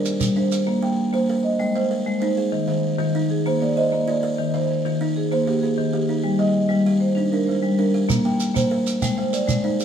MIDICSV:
0, 0, Header, 1, 4, 480
1, 0, Start_track
1, 0, Tempo, 309119
1, 1036, Time_signature, 12, 3, 24, 8
1, 15294, End_track
2, 0, Start_track
2, 0, Title_t, "Marimba"
2, 0, Program_c, 0, 12
2, 0, Note_on_c, 0, 70, 70
2, 309, Note_on_c, 0, 55, 73
2, 556, Note_off_c, 0, 70, 0
2, 559, Note_on_c, 0, 72, 72
2, 793, Note_off_c, 0, 55, 0
2, 1040, Note_on_c, 0, 58, 88
2, 1277, Note_on_c, 0, 79, 60
2, 1280, Note_off_c, 0, 72, 0
2, 1520, Note_off_c, 0, 58, 0
2, 1753, Note_on_c, 0, 58, 83
2, 2000, Note_off_c, 0, 79, 0
2, 2230, Note_on_c, 0, 75, 63
2, 2238, Note_off_c, 0, 58, 0
2, 2477, Note_on_c, 0, 56, 84
2, 2717, Note_off_c, 0, 75, 0
2, 2727, Note_on_c, 0, 72, 72
2, 2961, Note_off_c, 0, 56, 0
2, 3205, Note_on_c, 0, 56, 77
2, 3404, Note_off_c, 0, 72, 0
2, 3423, Note_on_c, 0, 72, 73
2, 3686, Note_off_c, 0, 56, 0
2, 3918, Note_on_c, 0, 51, 85
2, 4144, Note_off_c, 0, 72, 0
2, 4162, Note_on_c, 0, 72, 64
2, 4404, Note_off_c, 0, 51, 0
2, 4633, Note_on_c, 0, 51, 89
2, 4887, Note_off_c, 0, 72, 0
2, 5122, Note_off_c, 0, 51, 0
2, 5129, Note_on_c, 0, 68, 62
2, 5371, Note_on_c, 0, 58, 79
2, 5608, Note_on_c, 0, 74, 73
2, 5610, Note_off_c, 0, 68, 0
2, 5845, Note_on_c, 0, 75, 70
2, 5852, Note_off_c, 0, 58, 0
2, 6089, Note_on_c, 0, 58, 85
2, 6307, Note_off_c, 0, 74, 0
2, 6326, Note_on_c, 0, 74, 71
2, 6569, Note_off_c, 0, 75, 0
2, 6571, Note_off_c, 0, 58, 0
2, 6811, Note_on_c, 0, 51, 86
2, 7050, Note_off_c, 0, 74, 0
2, 7058, Note_on_c, 0, 72, 68
2, 7292, Note_off_c, 0, 51, 0
2, 7539, Note_on_c, 0, 51, 86
2, 7776, Note_off_c, 0, 72, 0
2, 8016, Note_off_c, 0, 51, 0
2, 8018, Note_on_c, 0, 68, 67
2, 8252, Note_on_c, 0, 58, 82
2, 8489, Note_on_c, 0, 67, 66
2, 8699, Note_off_c, 0, 68, 0
2, 8718, Note_on_c, 0, 68, 61
2, 8732, Note_off_c, 0, 58, 0
2, 8975, Note_on_c, 0, 51, 79
2, 9189, Note_off_c, 0, 67, 0
2, 9207, Note_on_c, 0, 67, 67
2, 9445, Note_off_c, 0, 68, 0
2, 9453, Note_off_c, 0, 51, 0
2, 9684, Note_on_c, 0, 55, 78
2, 9915, Note_on_c, 0, 75, 63
2, 9929, Note_off_c, 0, 67, 0
2, 10167, Note_off_c, 0, 55, 0
2, 10385, Note_on_c, 0, 55, 84
2, 10642, Note_off_c, 0, 75, 0
2, 10876, Note_on_c, 0, 72, 60
2, 10877, Note_off_c, 0, 55, 0
2, 11106, Note_on_c, 0, 62, 80
2, 11363, Note_on_c, 0, 70, 68
2, 11574, Note_off_c, 0, 72, 0
2, 11593, Note_on_c, 0, 72, 60
2, 11596, Note_off_c, 0, 62, 0
2, 11841, Note_on_c, 0, 55, 80
2, 12065, Note_off_c, 0, 70, 0
2, 12084, Note_on_c, 0, 70, 70
2, 12318, Note_off_c, 0, 72, 0
2, 12322, Note_off_c, 0, 55, 0
2, 12558, Note_on_c, 0, 58, 89
2, 12803, Note_off_c, 0, 70, 0
2, 12805, Note_on_c, 0, 79, 62
2, 13039, Note_off_c, 0, 58, 0
2, 13272, Note_on_c, 0, 58, 86
2, 13522, Note_off_c, 0, 79, 0
2, 13755, Note_off_c, 0, 58, 0
2, 14013, Note_on_c, 0, 56, 80
2, 14241, Note_on_c, 0, 72, 70
2, 14483, Note_on_c, 0, 74, 68
2, 14484, Note_off_c, 0, 56, 0
2, 14713, Note_on_c, 0, 56, 81
2, 14925, Note_off_c, 0, 72, 0
2, 14944, Note_on_c, 0, 72, 70
2, 15192, Note_off_c, 0, 56, 0
2, 15197, Note_off_c, 0, 74, 0
2, 15294, Note_off_c, 0, 72, 0
2, 15294, End_track
3, 0, Start_track
3, 0, Title_t, "Kalimba"
3, 0, Program_c, 1, 108
3, 0, Note_on_c, 1, 62, 79
3, 0, Note_on_c, 1, 68, 63
3, 75, Note_on_c, 1, 67, 64
3, 312, Note_off_c, 1, 62, 0
3, 320, Note_off_c, 1, 68, 0
3, 564, Note_on_c, 1, 62, 77
3, 787, Note_off_c, 1, 67, 0
3, 805, Note_on_c, 1, 67, 62
3, 1041, Note_off_c, 1, 62, 0
3, 1282, Note_on_c, 1, 58, 82
3, 1523, Note_off_c, 1, 67, 0
3, 1761, Note_off_c, 1, 58, 0
3, 1765, Note_on_c, 1, 72, 68
3, 2009, Note_on_c, 1, 70, 77
3, 2482, Note_on_c, 1, 79, 64
3, 2485, Note_off_c, 1, 72, 0
3, 2725, Note_on_c, 1, 56, 78
3, 2728, Note_off_c, 1, 70, 0
3, 2963, Note_on_c, 1, 70, 67
3, 2964, Note_off_c, 1, 79, 0
3, 3205, Note_off_c, 1, 56, 0
3, 3444, Note_on_c, 1, 63, 86
3, 3684, Note_on_c, 1, 68, 69
3, 3685, Note_off_c, 1, 70, 0
3, 3926, Note_off_c, 1, 63, 0
3, 4155, Note_on_c, 1, 51, 80
3, 4407, Note_off_c, 1, 68, 0
3, 4641, Note_on_c, 1, 65, 66
3, 4642, Note_off_c, 1, 51, 0
3, 4892, Note_on_c, 1, 63, 83
3, 5366, Note_off_c, 1, 65, 0
3, 5383, Note_on_c, 1, 72, 64
3, 5612, Note_off_c, 1, 63, 0
3, 5618, Note_on_c, 1, 58, 78
3, 5835, Note_off_c, 1, 72, 0
3, 5854, Note_on_c, 1, 72, 63
3, 6095, Note_off_c, 1, 58, 0
3, 6330, Note_on_c, 1, 65, 82
3, 6568, Note_on_c, 1, 70, 74
3, 6573, Note_off_c, 1, 72, 0
3, 6811, Note_off_c, 1, 65, 0
3, 7048, Note_on_c, 1, 51, 86
3, 7291, Note_off_c, 1, 70, 0
3, 7531, Note_off_c, 1, 51, 0
3, 7545, Note_on_c, 1, 65, 64
3, 7777, Note_on_c, 1, 63, 81
3, 8259, Note_off_c, 1, 65, 0
3, 8260, Note_on_c, 1, 72, 64
3, 8496, Note_off_c, 1, 63, 0
3, 8500, Note_on_c, 1, 58, 81
3, 8744, Note_on_c, 1, 65, 67
3, 8976, Note_off_c, 1, 58, 0
3, 8976, Note_off_c, 1, 72, 0
3, 9213, Note_on_c, 1, 58, 82
3, 9456, Note_on_c, 1, 63, 68
3, 9458, Note_off_c, 1, 65, 0
3, 9692, Note_off_c, 1, 58, 0
3, 9923, Note_on_c, 1, 55, 83
3, 10173, Note_off_c, 1, 63, 0
3, 10398, Note_on_c, 1, 56, 62
3, 10407, Note_off_c, 1, 55, 0
3, 10656, Note_on_c, 1, 67, 77
3, 11123, Note_off_c, 1, 56, 0
3, 11130, Note_on_c, 1, 63, 68
3, 11132, Note_off_c, 1, 67, 0
3, 11380, Note_on_c, 1, 62, 72
3, 11624, Note_on_c, 1, 56, 68
3, 11848, Note_off_c, 1, 63, 0
3, 11853, Note_off_c, 1, 62, 0
3, 12092, Note_on_c, 1, 62, 80
3, 12333, Note_on_c, 1, 67, 66
3, 12334, Note_off_c, 1, 56, 0
3, 12568, Note_off_c, 1, 62, 0
3, 12814, Note_on_c, 1, 58, 85
3, 13047, Note_off_c, 1, 67, 0
3, 13287, Note_off_c, 1, 58, 0
3, 13290, Note_on_c, 1, 72, 60
3, 13527, Note_on_c, 1, 70, 76
3, 14002, Note_off_c, 1, 70, 0
3, 14003, Note_off_c, 1, 72, 0
3, 14008, Note_on_c, 1, 79, 68
3, 14253, Note_on_c, 1, 56, 78
3, 14482, Note_off_c, 1, 79, 0
3, 14488, Note_on_c, 1, 70, 68
3, 14724, Note_off_c, 1, 56, 0
3, 14970, Note_on_c, 1, 63, 81
3, 15199, Note_off_c, 1, 70, 0
3, 15208, Note_on_c, 1, 68, 63
3, 15294, Note_off_c, 1, 63, 0
3, 15294, Note_off_c, 1, 68, 0
3, 15294, End_track
4, 0, Start_track
4, 0, Title_t, "Shekere"
4, 81, Note_on_c, 9, 82, 62
4, 236, Note_off_c, 9, 82, 0
4, 318, Note_on_c, 9, 82, 83
4, 473, Note_off_c, 9, 82, 0
4, 801, Note_on_c, 9, 82, 62
4, 956, Note_off_c, 9, 82, 0
4, 12571, Note_on_c, 9, 82, 78
4, 12726, Note_off_c, 9, 82, 0
4, 13042, Note_on_c, 9, 82, 61
4, 13197, Note_off_c, 9, 82, 0
4, 13293, Note_on_c, 9, 82, 74
4, 13448, Note_off_c, 9, 82, 0
4, 13767, Note_on_c, 9, 82, 55
4, 13922, Note_off_c, 9, 82, 0
4, 14006, Note_on_c, 9, 82, 70
4, 14161, Note_off_c, 9, 82, 0
4, 14490, Note_on_c, 9, 82, 57
4, 14645, Note_off_c, 9, 82, 0
4, 14729, Note_on_c, 9, 82, 75
4, 14884, Note_off_c, 9, 82, 0
4, 15220, Note_on_c, 9, 82, 57
4, 15294, Note_off_c, 9, 82, 0
4, 15294, End_track
0, 0, End_of_file